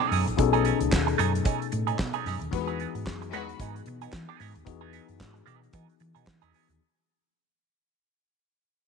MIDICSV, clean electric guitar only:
0, 0, Header, 1, 3, 480
1, 0, Start_track
1, 0, Tempo, 534759
1, 349, Time_signature, 4, 2, 24, 8
1, 7962, End_track
2, 0, Start_track
2, 0, Title_t, "Clean electric guitar"
2, 0, Program_c, 0, 27
2, 0, Note_on_c, 0, 68, 103
2, 1, Note_on_c, 0, 63, 91
2, 5, Note_on_c, 0, 61, 80
2, 11, Note_on_c, 0, 57, 77
2, 87, Note_off_c, 0, 57, 0
2, 94, Note_off_c, 0, 61, 0
2, 98, Note_on_c, 0, 57, 80
2, 99, Note_off_c, 0, 63, 0
2, 105, Note_on_c, 0, 61, 84
2, 106, Note_off_c, 0, 68, 0
2, 110, Note_on_c, 0, 63, 93
2, 117, Note_on_c, 0, 68, 94
2, 227, Note_off_c, 0, 68, 0
2, 232, Note_off_c, 0, 63, 0
2, 239, Note_off_c, 0, 61, 0
2, 258, Note_off_c, 0, 57, 0
2, 476, Note_on_c, 0, 68, 78
2, 483, Note_on_c, 0, 63, 87
2, 488, Note_on_c, 0, 61, 72
2, 494, Note_on_c, 0, 57, 66
2, 567, Note_off_c, 0, 57, 0
2, 575, Note_off_c, 0, 61, 0
2, 577, Note_on_c, 0, 57, 55
2, 579, Note_off_c, 0, 63, 0
2, 583, Note_off_c, 0, 68, 0
2, 586, Note_on_c, 0, 61, 64
2, 590, Note_on_c, 0, 63, 61
2, 594, Note_on_c, 0, 68, 64
2, 705, Note_off_c, 0, 68, 0
2, 711, Note_off_c, 0, 63, 0
2, 717, Note_off_c, 0, 61, 0
2, 738, Note_off_c, 0, 57, 0
2, 1061, Note_on_c, 0, 57, 91
2, 1070, Note_on_c, 0, 61, 90
2, 1073, Note_on_c, 0, 63, 111
2, 1077, Note_on_c, 0, 68, 108
2, 1184, Note_off_c, 0, 68, 0
2, 1189, Note_off_c, 0, 63, 0
2, 1195, Note_off_c, 0, 61, 0
2, 1255, Note_off_c, 0, 57, 0
2, 1298, Note_on_c, 0, 57, 83
2, 1306, Note_on_c, 0, 61, 94
2, 1313, Note_on_c, 0, 63, 90
2, 1315, Note_on_c, 0, 68, 90
2, 1430, Note_off_c, 0, 68, 0
2, 1437, Note_off_c, 0, 63, 0
2, 1440, Note_off_c, 0, 61, 0
2, 1493, Note_off_c, 0, 57, 0
2, 1679, Note_on_c, 0, 68, 66
2, 1685, Note_on_c, 0, 63, 60
2, 1690, Note_on_c, 0, 61, 59
2, 1692, Note_on_c, 0, 57, 58
2, 1771, Note_off_c, 0, 57, 0
2, 1778, Note_off_c, 0, 61, 0
2, 1781, Note_off_c, 0, 63, 0
2, 1786, Note_off_c, 0, 68, 0
2, 1920, Note_on_c, 0, 68, 96
2, 1927, Note_on_c, 0, 63, 96
2, 1931, Note_on_c, 0, 61, 85
2, 1935, Note_on_c, 0, 57, 87
2, 2019, Note_off_c, 0, 57, 0
2, 2024, Note_off_c, 0, 61, 0
2, 2027, Note_off_c, 0, 63, 0
2, 2029, Note_on_c, 0, 57, 76
2, 2035, Note_off_c, 0, 68, 0
2, 2035, Note_on_c, 0, 61, 78
2, 2037, Note_on_c, 0, 63, 96
2, 2046, Note_on_c, 0, 68, 83
2, 2150, Note_off_c, 0, 68, 0
2, 2154, Note_off_c, 0, 63, 0
2, 2161, Note_off_c, 0, 61, 0
2, 2184, Note_off_c, 0, 57, 0
2, 2401, Note_on_c, 0, 68, 83
2, 2407, Note_on_c, 0, 63, 79
2, 2411, Note_on_c, 0, 59, 65
2, 2414, Note_on_c, 0, 54, 67
2, 2499, Note_off_c, 0, 54, 0
2, 2506, Note_off_c, 0, 59, 0
2, 2510, Note_on_c, 0, 54, 59
2, 2511, Note_off_c, 0, 63, 0
2, 2515, Note_off_c, 0, 68, 0
2, 2517, Note_on_c, 0, 59, 63
2, 2522, Note_on_c, 0, 63, 62
2, 2526, Note_on_c, 0, 68, 57
2, 2638, Note_off_c, 0, 68, 0
2, 2644, Note_off_c, 0, 63, 0
2, 2651, Note_off_c, 0, 59, 0
2, 2665, Note_off_c, 0, 54, 0
2, 2992, Note_on_c, 0, 54, 94
2, 2999, Note_on_c, 0, 59, 95
2, 3004, Note_on_c, 0, 63, 109
2, 3011, Note_on_c, 0, 68, 87
2, 3115, Note_off_c, 0, 68, 0
2, 3123, Note_off_c, 0, 63, 0
2, 3128, Note_off_c, 0, 59, 0
2, 3181, Note_off_c, 0, 54, 0
2, 3231, Note_on_c, 0, 54, 84
2, 3237, Note_on_c, 0, 59, 73
2, 3241, Note_on_c, 0, 63, 90
2, 3247, Note_on_c, 0, 68, 84
2, 3358, Note_off_c, 0, 68, 0
2, 3367, Note_off_c, 0, 63, 0
2, 3371, Note_off_c, 0, 59, 0
2, 3420, Note_off_c, 0, 54, 0
2, 3605, Note_on_c, 0, 68, 76
2, 3614, Note_on_c, 0, 63, 66
2, 3621, Note_on_c, 0, 59, 69
2, 3622, Note_on_c, 0, 54, 55
2, 3704, Note_off_c, 0, 54, 0
2, 3707, Note_off_c, 0, 59, 0
2, 3711, Note_off_c, 0, 63, 0
2, 3713, Note_off_c, 0, 68, 0
2, 3848, Note_on_c, 0, 68, 94
2, 3852, Note_on_c, 0, 63, 81
2, 3858, Note_on_c, 0, 59, 78
2, 3867, Note_on_c, 0, 54, 80
2, 3934, Note_off_c, 0, 54, 0
2, 3943, Note_off_c, 0, 59, 0
2, 3944, Note_on_c, 0, 54, 79
2, 3947, Note_off_c, 0, 63, 0
2, 3953, Note_off_c, 0, 68, 0
2, 3954, Note_on_c, 0, 59, 79
2, 3958, Note_on_c, 0, 63, 87
2, 3964, Note_on_c, 0, 68, 80
2, 4070, Note_off_c, 0, 68, 0
2, 4078, Note_off_c, 0, 63, 0
2, 4081, Note_off_c, 0, 59, 0
2, 4102, Note_off_c, 0, 54, 0
2, 4317, Note_on_c, 0, 68, 83
2, 4322, Note_on_c, 0, 63, 74
2, 4327, Note_on_c, 0, 59, 66
2, 4333, Note_on_c, 0, 54, 72
2, 4410, Note_off_c, 0, 54, 0
2, 4415, Note_off_c, 0, 59, 0
2, 4420, Note_on_c, 0, 54, 63
2, 4422, Note_off_c, 0, 63, 0
2, 4425, Note_on_c, 0, 59, 71
2, 4427, Note_off_c, 0, 68, 0
2, 4432, Note_on_c, 0, 63, 64
2, 4438, Note_on_c, 0, 68, 62
2, 4550, Note_off_c, 0, 68, 0
2, 4557, Note_off_c, 0, 63, 0
2, 4562, Note_off_c, 0, 59, 0
2, 4580, Note_off_c, 0, 54, 0
2, 4898, Note_on_c, 0, 54, 84
2, 4906, Note_on_c, 0, 59, 99
2, 4912, Note_on_c, 0, 63, 100
2, 4918, Note_on_c, 0, 68, 99
2, 5027, Note_off_c, 0, 68, 0
2, 5033, Note_off_c, 0, 63, 0
2, 5041, Note_off_c, 0, 59, 0
2, 5093, Note_off_c, 0, 54, 0
2, 5143, Note_on_c, 0, 54, 81
2, 5150, Note_on_c, 0, 59, 83
2, 5156, Note_on_c, 0, 63, 83
2, 5159, Note_on_c, 0, 68, 81
2, 5268, Note_off_c, 0, 68, 0
2, 5277, Note_off_c, 0, 63, 0
2, 5282, Note_off_c, 0, 59, 0
2, 5336, Note_off_c, 0, 54, 0
2, 5518, Note_on_c, 0, 68, 60
2, 5524, Note_on_c, 0, 63, 69
2, 5531, Note_on_c, 0, 59, 65
2, 5535, Note_on_c, 0, 54, 62
2, 5624, Note_off_c, 0, 54, 0
2, 5627, Note_off_c, 0, 59, 0
2, 5631, Note_off_c, 0, 63, 0
2, 5635, Note_off_c, 0, 68, 0
2, 5762, Note_on_c, 0, 68, 97
2, 5769, Note_on_c, 0, 63, 100
2, 5774, Note_on_c, 0, 59, 86
2, 5779, Note_on_c, 0, 54, 78
2, 5857, Note_off_c, 0, 54, 0
2, 5863, Note_off_c, 0, 59, 0
2, 5868, Note_on_c, 0, 54, 67
2, 5869, Note_off_c, 0, 63, 0
2, 5871, Note_off_c, 0, 68, 0
2, 5874, Note_on_c, 0, 59, 70
2, 5880, Note_on_c, 0, 63, 66
2, 5882, Note_on_c, 0, 68, 75
2, 5990, Note_off_c, 0, 68, 0
2, 5996, Note_off_c, 0, 63, 0
2, 6000, Note_off_c, 0, 59, 0
2, 6023, Note_off_c, 0, 54, 0
2, 7962, End_track
3, 0, Start_track
3, 0, Title_t, "Muted clean electric guitar strokes"
3, 238, Note_on_c, 9, 29, 54
3, 327, Note_off_c, 9, 29, 0
3, 342, Note_on_c, 9, 29, 47
3, 432, Note_off_c, 9, 29, 0
3, 715, Note_on_c, 9, 29, 48
3, 805, Note_off_c, 9, 29, 0
3, 824, Note_on_c, 9, 29, 43
3, 913, Note_off_c, 9, 29, 0
3, 960, Note_on_c, 9, 29, 64
3, 1050, Note_off_c, 9, 29, 0
3, 1195, Note_on_c, 9, 29, 49
3, 1284, Note_off_c, 9, 29, 0
3, 1440, Note_on_c, 9, 29, 52
3, 1530, Note_off_c, 9, 29, 0
3, 1543, Note_on_c, 9, 29, 39
3, 1633, Note_off_c, 9, 29, 0
3, 1782, Note_on_c, 9, 29, 42
3, 1871, Note_off_c, 9, 29, 0
3, 2161, Note_on_c, 9, 29, 41
3, 2251, Note_off_c, 9, 29, 0
3, 2270, Note_on_c, 9, 29, 49
3, 2360, Note_off_c, 9, 29, 0
3, 2649, Note_on_c, 9, 29, 54
3, 2738, Note_off_c, 9, 29, 0
3, 2752, Note_on_c, 9, 29, 48
3, 2841, Note_off_c, 9, 29, 0
3, 2889, Note_on_c, 9, 29, 54
3, 2979, Note_off_c, 9, 29, 0
3, 3126, Note_on_c, 9, 29, 47
3, 3215, Note_off_c, 9, 29, 0
3, 3369, Note_on_c, 9, 29, 53
3, 3458, Note_off_c, 9, 29, 0
3, 3476, Note_on_c, 9, 29, 44
3, 3566, Note_off_c, 9, 29, 0
3, 4080, Note_on_c, 9, 29, 57
3, 4170, Note_off_c, 9, 29, 0
3, 4185, Note_on_c, 9, 29, 46
3, 4274, Note_off_c, 9, 29, 0
3, 4561, Note_on_c, 9, 29, 44
3, 4651, Note_off_c, 9, 29, 0
3, 4661, Note_on_c, 9, 29, 37
3, 4751, Note_off_c, 9, 29, 0
3, 4792, Note_on_c, 9, 29, 39
3, 4882, Note_off_c, 9, 29, 0
3, 5038, Note_on_c, 9, 29, 41
3, 5128, Note_off_c, 9, 29, 0
3, 5279, Note_on_c, 9, 29, 41
3, 5369, Note_off_c, 9, 29, 0
3, 5389, Note_on_c, 9, 29, 47
3, 5479, Note_off_c, 9, 29, 0
3, 6001, Note_on_c, 9, 29, 50
3, 6090, Note_off_c, 9, 29, 0
3, 7962, End_track
0, 0, End_of_file